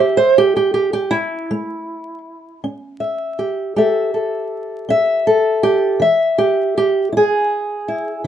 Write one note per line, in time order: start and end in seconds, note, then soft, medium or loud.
0.00 0.17 G4 medium
0.00 0.56 E5 loud
0.17 0.36 C5 medium
0.38 0.55 G4 medium
0.56 0.73 G4 medium
0.74 0.92 G4 medium
0.93 1.12 G4 medium
1.11 2.62 E4 loud
1.51 2.18 A3 medium
2.64 3.31 C#4 medium
3.00 3.78 E5 soft
3.39 3.75 G4 soft
3.76 4.43 A3 medium
3.76 5.62 G4 soft
3.76 4.13 A4 soft
3.76 4.90 E5 medium
4.14 5.26 A4 soft
4.89 5.56 C#4 medium
4.89 6.01 E5 loud
5.27 6.01 A4 medium
5.63 6.00 G4 loud
6.00 6.67 E3 medium
6.00 7.13 E5 medium
6.38 6.75 G4 medium
6.78 7.12 G4 medium
7.12 7.80 E4 medium
7.17 8.27 G#4 medium
7.88 8.24 E4 soft